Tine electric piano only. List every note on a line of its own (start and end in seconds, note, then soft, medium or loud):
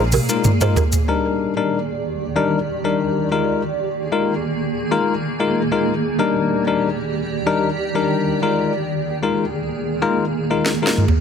0.29 0.50 G#3 medium
0.29 0.50 D#4 medium
0.29 0.50 F4 medium
0.29 0.50 A#4 medium
0.61 0.82 G#3 medium
0.61 0.82 D#4 medium
0.61 0.82 F4 medium
0.61 0.82 A#4 medium
1.08 1.53 G3 medium
1.08 1.53 D4 medium
1.08 1.53 D#4 medium
1.08 1.53 A#4 medium
1.57 1.78 G3 medium
1.57 1.78 D4 medium
1.57 1.78 D#4 medium
1.57 1.78 A#4 medium
2.36 2.58 G3 medium
2.36 2.58 D4 medium
2.36 2.58 D#4 medium
2.36 2.58 A#4 loud
2.84 3.28 G3 medium
2.84 3.28 D4 medium
2.84 3.28 D#4 medium
2.84 3.28 A#4 medium
3.32 3.61 G#3 medium
3.32 3.61 D#4 medium
3.32 3.61 F4 medium
3.32 3.61 A#4 medium
4.12 4.33 G#3 medium
4.12 4.33 D#4 medium
4.12 4.33 F4 medium
4.12 4.33 A#4 medium
4.91 5.13 G#3 medium
4.91 5.13 D#4 medium
4.91 5.13 F4 medium
4.91 5.13 A#4 loud
5.40 5.61 G#3 medium
5.40 5.61 D#4 medium
5.40 5.61 F4 medium
5.40 5.61 A#4 medium
5.72 5.93 G#3 medium
5.72 5.93 D#4 medium
5.72 5.93 F4 medium
5.72 5.93 A#4 medium
6.19 6.63 G3 medium
6.19 6.64 D4 medium
6.19 6.64 D#4 medium
6.19 6.64 A#4 medium
6.67 6.88 G3 medium
6.67 6.89 D4 medium
6.67 6.89 D#4 medium
6.67 6.89 A#4 medium
7.46 7.68 G3 medium
7.46 7.69 D4 medium
7.46 7.69 D#4 medium
7.46 7.69 A#4 loud
7.95 8.39 G3 medium
7.95 8.39 D4 medium
7.95 8.39 D#4 medium
7.95 8.39 A#4 medium
8.42 8.72 G#3 medium
8.42 8.72 D#4 medium
8.42 8.72 F4 medium
8.42 8.72 A#4 medium
9.23 9.44 G#3 medium
9.23 9.44 D#4 medium
9.23 9.44 F4 medium
9.23 9.44 A#4 medium
10.02 10.24 G#3 medium
10.02 10.24 D#4 medium
10.02 10.24 F4 medium
10.02 10.24 A#4 loud
10.50 10.71 G#3 medium
10.50 10.72 D#4 medium
10.50 10.72 F4 medium
10.50 10.72 A#4 medium
10.82 11.03 G#3 medium
10.82 11.04 D#4 medium
10.82 11.04 F4 medium
10.82 11.04 A#4 medium